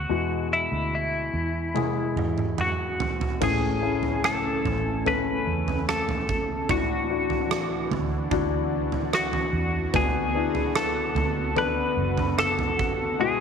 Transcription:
Already playing: B3 D4 F#4 G#4
0.09 E2 B2 G#3 E4 F#4
0.53 E4
0.72 D2
0.95 E4
1.34 E2
1.74 G#3 E4 G#4, high tom
2.16 E2, mid tom
2.38 mid tom
2.58 F#4, mid tom
3.00 floor tom
3.21 floor tom
3.40 A1 A2 C#3 E3 A3 C#4 G#4 G#5, kick, floor tom, crash
3.82 A3 C#4 E4
4.03 floor tom
4.24 A4, cross-stick
4.65 A1, floor tom
5.06 A3 C#4 A4 B4, floor tom
5.47 E2
5.68 floor tom
5.89 A4, cross-stick
6.09 floor tom
6.29 kick
6.69 D2 A2 E3 D4 E4 F#4, kick, floor tom
7.10 D4 E4 F#4
7.30 floor tom
7.51 cross-stick
7.91 D2, floor tom
8.31 D2 D4 E4 F#4, kick, floor tom
8.92 floor tom
9.13 F#4, cross-stick
9.33 floor tom
9.53 E2
9.93 D2 D3 B3 D4 F#4 G#4, kick, floor tom
10.34 B3 D4 E4
10.55 floor tom
10.75 A4, cross-stick
11.15 D2, floor tom
11.56 B3 D4 A4 B4, floor tom
11.97 F#1
12.18 floor tom
12.39 A4, cross-stick
12.59 floor tom
12.79 kick
13.19 B2 E3 G#3 E4 F#4 G#4

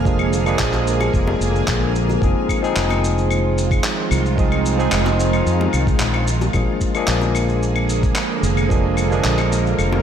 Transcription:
Already playing: F1 D3 F3 G#3 A#3 D4 G#4 F5 F6
0.05 F3 G#3 A#3 D4 G#4, kick, shaker
0.19 claves
0.33 shaker
0.46 F3 G#3 A#3 D4 G#4, claves, shaker
0.59 A#1, kick, clap, shaker
0.73 clap, high bongo, shaker
0.87 shaker
1.00 high bongo, claves, shaker
1.14 F1, kick, shaker
1.27 high bongo
1.41 F1, shaker
1.56 shaker
1.68 A#1, kick, clap, shaker
1.96 shaker
2.09 high bongo, shaker
2.21 F1 D#3 F3 G#3 C4 D#4 F4 G#4, kick, shaker
2.49 kick, claves, shaker
2.61 F3 G#3 C4 D#4 G#4, shaker
2.76 F1, clap, shaker
2.90 high bongo, claves, shaker
3.04 shaker
3.18 shaker
3.31 claves, shaker
3.58 shaker
3.71 kick, claves, shaker
3.84 clap, shaker
4.11 C2, claves, shaker
4.26 shaker
4.37 F3 G#3 C4 D#4 G#4, kick, shaker
4.52 claves
4.66 shaker
4.77 F3 G#3 C4 D#4 G#4, shaker
4.92 F1, clap, claves, shaker
5.06 clap, high bongo, shaker
5.20 shaker
5.33 claves, shaker
5.46 F2, shaker
5.61 high bongo
5.73 C2, claves, shaker
5.87 kick, shaker
6.00 A#1, clap, shaker
6.14 claves
6.27 D3 A#3 G#4, shaker
6.41 high bongo, shaker
6.53 A#1 F3 G#3 A#3 D4 G#4, kick, claves, shaker
6.81 kick, shaker
6.95 F3 G#3 A#3 D4 G#4, claves, shaker
7.08 A#1, clap, shaker
7.22 high bongo, shaker
7.35 claves, shaker
7.49 shaker
7.63 shaker
7.76 claves
7.89 shaker
8.03 kick, shaker
8.16 clap, claves, shaker
8.43 F1 A#4, shaker
8.57 claves, shaker
8.69 F3 G#3 A#3 D4 G#4, kick, shaker
8.97 claves, shaker
9.10 F3 G#3 A#3 D4 G#4, shaker
9.24 A#1, clap, shaker
9.38 clap, high bongo, claves, shaker
9.52 shaker
9.67 shaker
9.79 F1, claves, shaker
9.92 high bongo

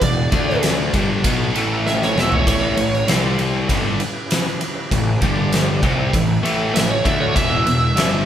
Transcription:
Already playing: B3 D4 F#4 G#4
0.01 E1 E2 B2 D5, kick, ride
0.31 D2 D3 A3 D4 A4 D5, kick, ride
0.50 snare
0.63 snare, ride
0.93 G1 G2 D3 G3 D4 F#4 B4 G#5, kick, ride
1.23 B1 B2 F#3 B3, kick, ride
1.53 A1 A2 E3 A3 E4 A4 E5, ride
1.87 E5, snare
2.02 C#5, snare
2.16 E1 E2 B2 E3 E5, snare
2.32 C#5, floor tom
2.46 A1 A2 E3 A3 C#4 E4 G4 B4 C#5, kick, ride
2.76 A1 A2 E3, ride
2.94 snare
3.08 C2 C3 G3 C4 G4 C5, snare, ride
3.39 ride
3.69 G1 G2 D3 G3 C#4 E4 G4 B4, kick, ride
4.00 ride
4.31 snare, ride
4.47 snare
4.61 ride
4.91 A1 A2 E3, kick, ride
5.21 G1 G2 D3 G3 D4 G4 D5, kick, ride
5.53 snare, ride
5.82 C2 C3 G3 C4 E4 G4 B4 E5, kick, ride
6.13 A1 A2 E3, kick, ride
6.43 A1 A2 E3 A3, ride
6.73 A1 A2 E3 E5, snare, ride
6.90 C#5
7.04 D2 D3 A3 D4 E5, kick, ride
7.20 C#5
7.34 E1 E2 B2 E3 D4 F#4 G#4 B4 E5, kick, ride
7.66 E1 E2 B2, ride
7.96 G1 G2 D3 G3 D4 G4 D5, snare, ride

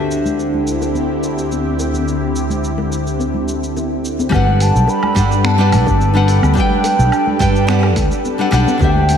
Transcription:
Already playing: D2 D3 C4 D4 E4 G4 C5 E5
0.11 cabasa
0.25 high bongo, low conga, cabasa
0.39 cabasa
0.54 low conga
0.67 cabasa
0.82 high bongo, cabasa
0.95 high conga, cabasa
1.23 high bongo, cabasa
1.38 cabasa
1.52 high conga, cabasa
1.79 high bongo, cabasa
1.94 high conga, cabasa
2.08 cabasa
2.21 high bongo
2.36 cabasa
2.50 low conga, cabasa
2.64 cabasa
2.78 high bongo, low conga
2.92 cabasa
3.07 cabasa
3.19 high bongo, high conga, cabasa
3.34 low conga
3.48 cabasa
3.63 cabasa
3.76 high bongo, high conga, cabasa
4.05 cabasa
4.19 high bongo, high conga, cabasa
4.29 G1 G3 D4 G4 A4 B4, kick, high bongo, cabasa, low woodblock
4.33 B4 F#5
4.46 low conga
4.60 A5, open hi-hat, cabasa
4.75 B1, cabasa
4.88 B5, high bongo, cabasa
5.03 low conga, low woodblock
5.15 G2 G3 D4 A4 B4 F#5, kick, open hi-hat, cabasa
5.31 high bongo, cabasa
5.44 A5, finger snap, high conga, cabasa
5.58 G3 D4 A4 B4 F#5
5.72 B1, open hi-hat, low conga, cabasa, low woodblock
5.86 G1, kick, high bongo, cabasa
6.00 high conga, cabasa
6.14 G3 D4 A4 B4 F#5
6.28 open hi-hat, high bongo, cabasa
6.42 D2, high conga, cabasa, low woodblock
6.54 G3 D4 A4 G5, kick, cabasa
6.58 B4 G5
6.70 low conga
6.84 open hi-hat, high bongo, cabasa
6.99 B1, cabasa
7.12 cabasa, low woodblock
7.26 high bongo, low conga
7.39 G2 G3 D4 A4 B4 G5, kick, open hi-hat, cabasa
7.56 cabasa
7.67 G3 D4 A4 B4 F#5, finger snap, high conga, cabasa
7.83 high bongo, low woodblock
7.96 D2, kick, open hi-hat, low conga, cabasa
8.11 cabasa
8.24 high bongo, high conga, cabasa
8.38 G3 D4 A4 B4 F#5
8.51 B1 G3 D4 A4 B4 F#5, open hi-hat, cabasa, low woodblock
8.68 high conga, cabasa
8.78 D2 D3 A3 C4 D4 E4 G4, kick, high bongo, cabasa
8.82 C5 E5 G5
8.95 low conga
9.09 open hi-hat, cabasa

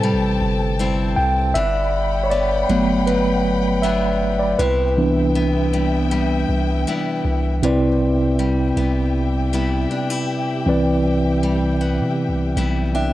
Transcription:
Already playing: A2 C3 G3 C4 E4 A4 B4 C5 G5 A5
0.03 G3
0.13 A1
0.41 G1
0.79 G3 C4 E4
1.16 C2 G5
1.54 G1 G2 D4 E5 F#5 G5 B5
2.24 C#5
2.30 B3 D5
2.69 G1 F#3 A3 B3
3.07 F#3 B4
3.82 F#3 B3 D4 E5
4.39 D5
4.59 C2 C3 B3 E4 B4 E5 G5
4.97 E3 B3 D4
5.35 B3
5.73 G3
6.11 G3
6.49 C2
6.87 G3 B3 E4
7.25 C2
7.62 C2 C3 C4 E4 G4 B4 D5 E5 G5
8.39 G3
8.77 C2 B3
9.53 G3 B3 E4
9.91 D4
10.10 E4
10.66 C2 E3 C4 E4 B4 D5
11.43 G3
11.81 B3
12.00 C3
12.28 C2
12.57 B1 G3 B3 E4
12.95 D4 E5 G5

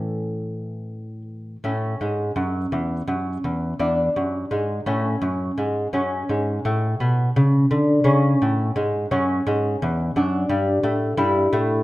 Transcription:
Already playing: A2 E3 C#4 A4
1.64 A2 C#4
2.01 G#2
2.36 F#2
2.72 E2
3.08 F#2
3.44 E2
3.80 E2 D4
4.16 F#2
4.51 G#2
4.86 A2 C#4
5.22 F#2
5.58 G#2
5.93 F#2 C#4
6.29 G#2
6.65 A2
7.00 B2
7.36 C#3
7.71 D3
8.04 C#3 C#4
8.42 A2
8.76 G#2
9.11 F#2 C#4
9.47 G#2
9.82 E2
10.16 F#2 D4
10.49 G2
10.83 A2
11.17 G2 E4
11.53 A2

